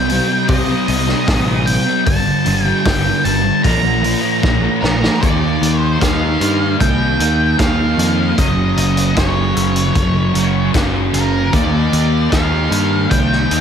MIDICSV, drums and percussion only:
0, 0, Header, 1, 2, 480
1, 0, Start_track
1, 0, Tempo, 788436
1, 1256, Time_signature, 4, 2, 24, 8
1, 8283, End_track
2, 0, Start_track
2, 0, Title_t, "Drums"
2, 58, Note_on_c, 9, 46, 60
2, 119, Note_off_c, 9, 46, 0
2, 294, Note_on_c, 9, 46, 71
2, 298, Note_on_c, 9, 36, 109
2, 355, Note_off_c, 9, 46, 0
2, 359, Note_off_c, 9, 36, 0
2, 536, Note_on_c, 9, 46, 70
2, 597, Note_off_c, 9, 46, 0
2, 662, Note_on_c, 9, 38, 37
2, 723, Note_off_c, 9, 38, 0
2, 778, Note_on_c, 9, 36, 108
2, 778, Note_on_c, 9, 46, 81
2, 783, Note_on_c, 9, 38, 104
2, 839, Note_off_c, 9, 36, 0
2, 839, Note_off_c, 9, 46, 0
2, 844, Note_off_c, 9, 38, 0
2, 1017, Note_on_c, 9, 46, 65
2, 1078, Note_off_c, 9, 46, 0
2, 1256, Note_on_c, 9, 46, 80
2, 1258, Note_on_c, 9, 36, 109
2, 1317, Note_off_c, 9, 46, 0
2, 1318, Note_off_c, 9, 36, 0
2, 1495, Note_on_c, 9, 46, 58
2, 1556, Note_off_c, 9, 46, 0
2, 1738, Note_on_c, 9, 36, 123
2, 1739, Note_on_c, 9, 46, 79
2, 1744, Note_on_c, 9, 38, 118
2, 1799, Note_off_c, 9, 36, 0
2, 1799, Note_off_c, 9, 46, 0
2, 1805, Note_off_c, 9, 38, 0
2, 1979, Note_on_c, 9, 46, 59
2, 2039, Note_off_c, 9, 46, 0
2, 2219, Note_on_c, 9, 36, 94
2, 2220, Note_on_c, 9, 46, 69
2, 2280, Note_off_c, 9, 36, 0
2, 2281, Note_off_c, 9, 46, 0
2, 2460, Note_on_c, 9, 46, 63
2, 2521, Note_off_c, 9, 46, 0
2, 2699, Note_on_c, 9, 36, 114
2, 2703, Note_on_c, 9, 38, 64
2, 2760, Note_off_c, 9, 36, 0
2, 2764, Note_off_c, 9, 38, 0
2, 2946, Note_on_c, 9, 38, 91
2, 3007, Note_off_c, 9, 38, 0
2, 3068, Note_on_c, 9, 38, 96
2, 3129, Note_off_c, 9, 38, 0
2, 3182, Note_on_c, 9, 36, 98
2, 3185, Note_on_c, 9, 42, 64
2, 3243, Note_off_c, 9, 36, 0
2, 3246, Note_off_c, 9, 42, 0
2, 3426, Note_on_c, 9, 42, 71
2, 3487, Note_off_c, 9, 42, 0
2, 3662, Note_on_c, 9, 36, 106
2, 3663, Note_on_c, 9, 42, 81
2, 3669, Note_on_c, 9, 38, 124
2, 3723, Note_off_c, 9, 36, 0
2, 3724, Note_off_c, 9, 42, 0
2, 3730, Note_off_c, 9, 38, 0
2, 3903, Note_on_c, 9, 42, 72
2, 3964, Note_off_c, 9, 42, 0
2, 4143, Note_on_c, 9, 36, 101
2, 4145, Note_on_c, 9, 42, 62
2, 4204, Note_off_c, 9, 36, 0
2, 4206, Note_off_c, 9, 42, 0
2, 4384, Note_on_c, 9, 42, 78
2, 4445, Note_off_c, 9, 42, 0
2, 4622, Note_on_c, 9, 36, 111
2, 4624, Note_on_c, 9, 42, 69
2, 4629, Note_on_c, 9, 38, 98
2, 4683, Note_off_c, 9, 36, 0
2, 4685, Note_off_c, 9, 42, 0
2, 4690, Note_off_c, 9, 38, 0
2, 4865, Note_on_c, 9, 42, 77
2, 4926, Note_off_c, 9, 42, 0
2, 5102, Note_on_c, 9, 36, 102
2, 5102, Note_on_c, 9, 42, 64
2, 5163, Note_off_c, 9, 36, 0
2, 5163, Note_off_c, 9, 42, 0
2, 5342, Note_on_c, 9, 42, 72
2, 5402, Note_off_c, 9, 42, 0
2, 5461, Note_on_c, 9, 42, 73
2, 5522, Note_off_c, 9, 42, 0
2, 5580, Note_on_c, 9, 42, 72
2, 5581, Note_on_c, 9, 36, 108
2, 5586, Note_on_c, 9, 38, 115
2, 5641, Note_off_c, 9, 42, 0
2, 5642, Note_off_c, 9, 36, 0
2, 5647, Note_off_c, 9, 38, 0
2, 5824, Note_on_c, 9, 42, 62
2, 5885, Note_off_c, 9, 42, 0
2, 5940, Note_on_c, 9, 42, 65
2, 6001, Note_off_c, 9, 42, 0
2, 6060, Note_on_c, 9, 36, 98
2, 6060, Note_on_c, 9, 42, 60
2, 6121, Note_off_c, 9, 36, 0
2, 6121, Note_off_c, 9, 42, 0
2, 6301, Note_on_c, 9, 42, 72
2, 6362, Note_off_c, 9, 42, 0
2, 6541, Note_on_c, 9, 36, 109
2, 6541, Note_on_c, 9, 42, 64
2, 6547, Note_on_c, 9, 38, 115
2, 6601, Note_off_c, 9, 36, 0
2, 6602, Note_off_c, 9, 42, 0
2, 6607, Note_off_c, 9, 38, 0
2, 6781, Note_on_c, 9, 42, 69
2, 6842, Note_off_c, 9, 42, 0
2, 7020, Note_on_c, 9, 36, 94
2, 7020, Note_on_c, 9, 42, 70
2, 7081, Note_off_c, 9, 36, 0
2, 7081, Note_off_c, 9, 42, 0
2, 7263, Note_on_c, 9, 42, 62
2, 7324, Note_off_c, 9, 42, 0
2, 7500, Note_on_c, 9, 42, 73
2, 7501, Note_on_c, 9, 36, 113
2, 7505, Note_on_c, 9, 38, 113
2, 7561, Note_off_c, 9, 42, 0
2, 7562, Note_off_c, 9, 36, 0
2, 7566, Note_off_c, 9, 38, 0
2, 7744, Note_on_c, 9, 42, 69
2, 7805, Note_off_c, 9, 42, 0
2, 7982, Note_on_c, 9, 36, 94
2, 7982, Note_on_c, 9, 42, 74
2, 8043, Note_off_c, 9, 36, 0
2, 8043, Note_off_c, 9, 42, 0
2, 8111, Note_on_c, 9, 38, 36
2, 8172, Note_off_c, 9, 38, 0
2, 8225, Note_on_c, 9, 42, 81
2, 8283, Note_off_c, 9, 42, 0
2, 8283, End_track
0, 0, End_of_file